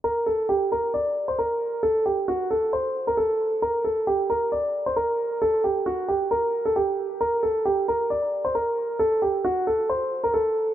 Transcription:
X:1
M:4/4
L:1/16
Q:1/4=134
K:Gm
V:1 name="Grand piano"
B2 A2 G2 B2 d3 c B4 | A2 G2 ^F2 A2 c3 B A4 | B2 A2 G2 B2 d3 c B4 | A2 G2 ^F2 G2 B3 A G4 |
B2 A2 G2 B2 d3 c B4 | A2 G2 ^F2 A2 c3 B A4 |]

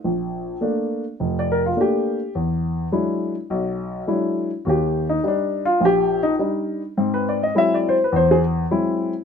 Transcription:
X:1
M:4/4
L:1/16
Q:"Swing" 1/4=104
K:Eblyd
V:1 name="Grand piano"
z8 z d B F G4 | z16 | [_G=G]2 E2 D2 F2 G2 E2 z4 | z _c d e =e d =c _c =c _A z6 |]
V:2 name="Grand piano"
B,,,4 [A,B,D]2 z2 F,,,4 [A,B,D]2 z2 | =E,,4 [^F,^G,D=E]2 z2 =B,,,4 [F,G,DE]2 z2 | E,,4 [G,DE]2 z2 B,,,4 [G,DE]2 z2 | [_A,,C]4 [_G,_A,C=E]2 z2 =E,,4 [G,A,CE]2 z2 |]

